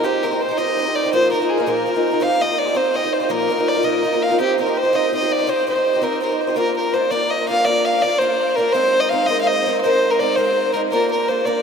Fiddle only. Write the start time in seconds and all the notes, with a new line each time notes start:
0.04 G4
0.23 A#4
0.41 C5
0.58 D#5
0.96 D5
1.13 C5
1.32 A#4
1.49 G#4
1.68 A#4
2.23 F5
2.42 D#5
2.59 D5
2.77 C5
2.96 D#5
3.13 C5
3.23 C5
3.31 A#4
3.68 D5
3.85 D#5
4.22 F5
4.40 G4
4.61 A#4
4.78 C5
4.95 D#5
5.15 D#5
5.32 D5
5.49 C5
5.70 C5
6.03 A#4
6.22 A#4
6.41 C5
6.57 A#4
6.77 A#4
6.94 C5
7.11 D5
7.31 D#5
7.49 F5
7.65 D5
7.85 F5
8.02 D5
8.19 C5
8.56 A#4
8.72 C5
9.00 D#5
9.09 F5
9.26 D#5
9.41 F5
9.47 D#5
9.81 C5
10.11 A#4
10.19 D5
10.36 C5
10.73 A#4
10.91 A#4
11.12 A#4
11.29 C5
11.45 D5